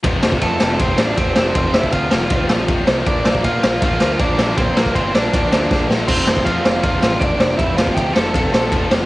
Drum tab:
CC |----------------|----------------|----------------|----------------|
RD |x---x---x---x---|x---x---x---x---|x---x---x---x---|x---x---x-------|
SD |--o---o---o---o-|--o---o---o---o-|--o---o---o---o-|--o---o---o-o-o-|
BD |o--oo---o---o---|o--oo---o---o---|o--oo---o---o---|o--oo---o---o---|

CC |x---------------|----------------|
RD |----x---x---x---|x---x---x---x---|
SD |--o---o---o---o-|--o---o---o---o-|
BD |o--oo---o---o---|o--oo---o---o---|